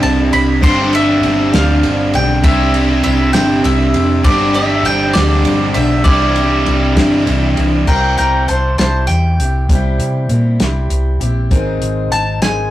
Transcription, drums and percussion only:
0.03 ride medium
0.33 ride medium
0.63 kick loud
0.63 crash medium
0.93 ride medium
1.23 ride medium
1.53 snare loud
1.53 ride medium
1.83 ride medium
2.14 ride medium
2.44 kick loud
2.44 ride medium
2.74 ride medium
3.04 ride medium
3.34 snare loud
3.34 ride loud
3.64 ride medium
3.94 ride medium
4.25 kick loud
4.25 ride loud
4.54 ride medium
4.85 ride medium
5.15 snare loud
5.15 ride loud
5.45 ride medium
5.75 ride medium
6.05 kick loud
6.05 ride loud
6.36 ride medium
6.66 ride medium
6.96 kick medium
6.96 snare loud
6.96 ride loud
7.27 ride medium
7.57 ride medium
7.87 kick loud
7.87 crash medium
8.18 closed hi-hat medium
8.49 closed hi-hat medium
8.79 snare loud
8.79 closed hi-hat medium
9.09 closed hi-hat medium
9.40 closed hi-hat medium
9.69 kick loud
9.69 closed hi-hat medium
10.00 closed hi-hat medium
10.29 closed hi-hat medium
10.60 snare loud
10.60 closed hi-hat medium
10.90 closed hi-hat medium
11.21 closed hi-hat medium
11.51 kick loud
11.51 closed hi-hat medium
11.82 closed hi-hat medium
12.12 closed hi-hat medium
12.42 snare loud
12.42 closed hi-hat medium

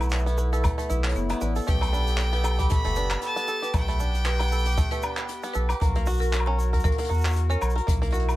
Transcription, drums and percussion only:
0.00 closed hi-hat soft
0.00 low woodblock medium
0.00 shaker soft
0.10 shaker soft
0.12 clap medium
0.12 closed hi-hat medium
0.12 shaker medium
0.18 shaker soft
0.27 closed hi-hat medium
0.27 shaker soft
0.38 shaker medium
0.53 closed hi-hat soft
0.53 shaker soft
0.64 kick loud
0.64 closed hi-hat medium
0.64 low woodblock medium
0.64 shaker medium
0.79 closed hi-hat medium
0.79 shaker medium
0.90 shaker medium
1.04 clap medium
1.04 shaker medium
1.09 closed hi-hat medium
1.15 shaker medium
1.29 closed hi-hat medium
1.29 low woodblock medium
1.29 shaker soft
1.41 shaker medium
1.56 closed hi-hat soft
1.56 shaker medium
1.59 shaker soft
1.62 shaker soft
1.64 shaker soft
1.67 kick loud
1.67 closed hi-hat medium
1.67 shaker medium
1.74 shaker soft
1.78 low woodblock medium
1.78 shaker soft
1.82 closed hi-hat medium
1.94 shaker medium
2.07 closed hi-hat soft
2.07 shaker medium
2.18 clap medium
2.18 closed hi-hat medium
2.18 shaker medium
2.33 closed hi-hat medium
2.44 low woodblock medium
2.44 shaker medium
2.59 kick medium
2.59 closed hi-hat medium
2.59 shaker medium
2.70 kick loud
2.70 closed hi-hat medium
2.70 shaker medium
2.84 closed hi-hat medium
2.96 shaker medium
3.11 clap medium
3.11 low woodblock medium
3.11 shaker medium
3.22 closed hi-hat medium
3.22 shaker medium
3.37 closed hi-hat medium
3.37 shaker soft
3.48 shaker medium
3.63 closed hi-hat soft
3.63 shaker medium
3.73 kick loud
3.73 closed hi-hat medium
3.73 low woodblock medium
3.73 shaker medium
3.89 closed hi-hat medium
3.89 shaker soft
4.00 shaker medium
4.14 closed hi-hat medium
4.14 shaker soft
4.25 clap medium
4.25 closed hi-hat medium
4.25 shaker medium
4.39 closed hi-hat medium
4.39 low woodblock medium
4.39 shaker soft
4.43 shaker soft
4.48 shaker soft
4.52 shaker medium
4.58 shaker medium
4.60 shaker soft
4.65 closed hi-hat medium
4.65 shaker medium
4.71 shaker soft
4.77 kick loud
4.77 closed hi-hat medium
4.77 shaker medium
4.91 closed hi-hat medium
4.91 shaker medium
5.03 low woodblock medium
5.03 shaker medium
5.17 clap medium
5.17 shaker soft
5.28 closed hi-hat medium
5.28 shaker medium
5.43 closed hi-hat medium
5.43 shaker soft
5.54 shaker medium
5.69 closed hi-hat medium
5.69 low woodblock medium
5.69 shaker soft
5.81 kick loud
5.81 closed hi-hat medium
5.81 shaker soft
5.95 closed hi-hat medium
6.06 shaker medium
6.10 shaker medium
6.14 shaker medium
6.17 shaker soft
6.21 closed hi-hat soft
6.21 shaker soft
6.21 shaker medium
6.24 shaker soft
6.27 shaker soft
6.33 clap medium
6.33 closed hi-hat medium
6.33 shaker medium
6.40 low woodblock medium
6.59 shaker medium
6.74 kick medium
6.74 closed hi-hat medium
6.80 shaker soft
6.84 kick loud
6.84 closed hi-hat soft
6.84 shaker medium
6.92 closed hi-hat soft
6.98 closed hi-hat medium
7.04 closed hi-hat medium
7.10 shaker soft
7.14 shaker soft
7.18 shaker soft
7.21 shaker soft
7.25 clap medium
7.25 shaker medium
7.27 shaker medium
7.30 shaker medium
7.33 shaker medium
7.36 closed hi-hat medium
7.36 shaker medium
7.51 shaker soft
7.62 low woodblock medium
7.62 shaker medium
7.70 shaker soft
7.77 closed hi-hat medium
7.88 kick loud
7.88 closed hi-hat medium
7.88 shaker medium
8.03 closed hi-hat medium
8.10 closed hi-hat soft
8.10 shaker medium
8.19 closed hi-hat soft
8.28 closed hi-hat soft
8.28 low woodblock medium
8.28 shaker soft

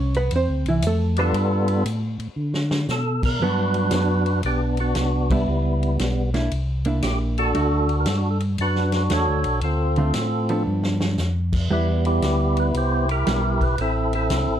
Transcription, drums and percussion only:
0.14 ride soft
0.31 ride medium
0.66 ride soft
0.82 hi-hat pedal medium
0.82 ride medium
1.16 ride soft
1.34 ride medium
1.68 ride soft
1.86 hi-hat pedal medium
1.86 ride medium
2.20 ride soft
2.54 snare medium
2.71 snare medium
2.88 snare medium
2.88 hi-hat pedal medium
3.23 kick medium
3.23 crash medium
3.74 ride soft
3.91 snare medium
3.91 hi-hat pedal medium
3.91 ride medium
4.26 ride soft
4.43 ride medium
4.77 ride soft
4.95 snare medium
4.95 hi-hat pedal medium
4.95 ride medium
5.30 kick medium
5.30 ride medium
5.83 ride soft
5.99 snare medium
5.99 hi-hat pedal medium
5.99 ride medium
6.34 snare soft
6.34 ride soft
6.51 ride medium
6.85 ride medium
7.02 snare medium
7.02 hi-hat pedal medium
7.02 ride medium
7.38 ride soft
7.55 ride medium
7.89 ride soft
8.06 snare medium
8.06 hi-hat pedal medium
8.06 ride medium
8.40 ride soft
8.58 ride medium
8.76 snare soft
8.92 snare soft
8.92 ride soft
9.10 snare medium
9.10 hi-hat pedal medium
9.10 ride medium
9.44 ride medium
9.61 ride medium
9.96 ride soft
10.14 snare medium
10.14 hi-hat pedal medium
10.14 ride medium
10.49 ride soft
10.83 snare medium
11.01 snare medium
11.18 snare medium
11.18 hi-hat pedal medium
11.53 kick medium
11.53 crash medium
12.05 ride soft
12.22 snare medium
12.22 hi-hat pedal medium
12.22 ride medium
12.57 ride soft
12.74 ride medium
13.09 ride soft
13.27 snare medium
13.27 hi-hat pedal medium
13.27 ride medium
13.61 kick medium
13.61 ride soft
13.78 ride medium
14.13 ride soft
14.30 snare medium
14.30 hi-hat pedal medium
14.30 ride medium

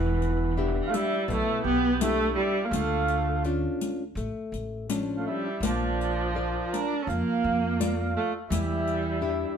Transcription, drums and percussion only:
0.22 riq soft
0.94 riq soft
1.30 riq soft
2.01 riq medium
2.73 riq medium
3.08 riq soft
3.44 riq soft
3.81 riq soft
4.17 riq soft
4.54 riq soft
4.90 riq medium
5.63 riq medium
6.01 riq soft
6.74 riq soft
7.10 riq soft
7.81 riq medium
8.52 riq medium
8.87 riq soft

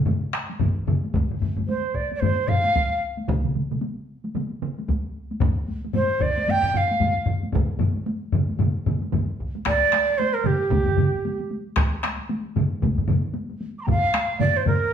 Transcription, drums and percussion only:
0.06 taiko low-mid medium
0.06 taiko mid medium
0.06 taiko high medium
0.33 taiko rim medium
0.49 taiko high medium
0.59 taiko medium
0.59 taiko low-mid loud
0.59 taiko mid medium
0.59 taiko high medium
0.87 taiko low-mid loud
0.87 taiko mid loud
1.03 taiko high soft
1.14 taiko medium
1.14 taiko low-mid medium
1.14 taiko high medium
1.31 taiko low-mid medium
1.41 taiko low-mid medium
1.41 taiko high soft
1.57 taiko low-mid medium
1.57 taiko high medium
1.69 taiko high medium
1.95 taiko medium
2.12 taiko high medium
2.22 taiko low-mid loud
2.22 taiko high medium
2.48 taiko low-mid loud
2.64 taiko high medium
2.75 taiko medium
2.75 taiko high medium
3.17 taiko high medium
3.28 taiko loud
3.28 taiko mid medium
3.28 taiko high medium
3.45 taiko mid medium
3.55 taiko mid medium
3.55 taiko high soft
3.71 taiko mid medium
3.71 taiko high medium
3.82 taiko high medium
4.25 taiko high medium
4.35 taiko mid medium
4.35 taiko high medium
4.62 taiko mid loud
4.79 taiko high medium
4.88 taiko medium
4.88 taiko high medium
5.31 taiko high medium
5.40 taiko loud
5.40 taiko low-mid loud
5.40 taiko high medium
5.68 taiko high soft
5.85 taiko high medium
5.93 taiko low-mid medium
5.93 taiko high medium
6.20 taiko medium
6.20 taiko low-mid medium
6.37 taiko high medium
6.48 taiko low-mid medium
6.48 taiko high medium
6.63 taiko low-mid medium
6.74 taiko low-mid medium
6.91 taiko high medium
7.00 taiko medium
7.00 taiko low-mid medium
7.00 taiko high medium
7.26 taiko low-mid medium
7.43 taiko high medium
7.53 taiko loud
7.53 taiko low-mid loud
7.53 taiko mid loud
7.53 taiko high medium
7.79 taiko low-mid loud
7.79 taiko mid medium
7.79 taiko high soft
7.96 taiko high medium
8.06 taiko high medium
8.32 taiko low-mid medium
8.32 taiko mid loud
8.49 taiko high medium
8.59 taiko low-mid medium
8.59 taiko mid medium
8.59 taiko high medium
8.86 taiko low-mid loud
8.86 taiko mid medium
9.02 taiko high medium
9.13 taiko medium
9.13 taiko low-mid medium
9.13 taiko mid loud
9.13 taiko high medium
9.40 taiko medium
9.55 taiko high medium
9.65 taiko rim medium
9.65 taiko medium
9.65 taiko high medium
9.83 taiko high soft
9.92 taiko rim medium
9.92 taiko high medium
10.10 taiko high soft
10.20 taiko high medium
10.35 taiko high soft
10.44 taiko low-mid loud
10.44 taiko mid medium
10.44 taiko high medium
10.62 taiko high soft
10.70 taiko loud
10.70 taiko low-mid medium
10.70 taiko mid medium
10.70 taiko high medium
10.86 taiko low-mid medium
10.86 taiko mid medium
10.86 taiko high soft
10.97 taiko low-mid medium
10.97 taiko mid loud
10.97 taiko high soft
11.15 taiko high soft
11.25 taiko high medium
11.40 taiko high soft
11.51 taiko high medium
11.66 taiko high soft
11.76 taiko rim medium
11.76 taiko loud
11.76 taiko high medium
11.93 taiko high soft
12.04 taiko rim medium
12.04 taiko high medium
12.19 taiko high soft
12.29 taiko high medium
12.46 taiko high soft
12.56 taiko low-mid loud
12.56 taiko mid loud
12.56 taiko high medium
12.73 taiko high soft
12.82 taiko medium
12.82 taiko low-mid medium
12.82 taiko mid medium
12.82 taiko high medium
12.98 taiko low-mid medium
12.98 taiko mid medium
12.98 taiko high soft
13.08 taiko low-mid loud
13.08 taiko mid medium
13.08 taiko high soft
13.34 taiko high medium
13.50 taiko high medium
13.61 taiko high medium
13.77 taiko high soft
13.88 taiko medium
13.88 taiko low-mid loud
13.88 taiko mid loud
13.88 taiko high medium
14.14 taiko rim medium
14.14 taiko high medium
14.30 taiko high soft
14.39 taiko low-mid loud
14.39 taiko mid loud
14.39 taiko high medium
14.57 taiko high soft
14.66 taiko low-mid loud
14.66 taiko mid medium
14.66 taiko high medium
14.82 taiko high soft

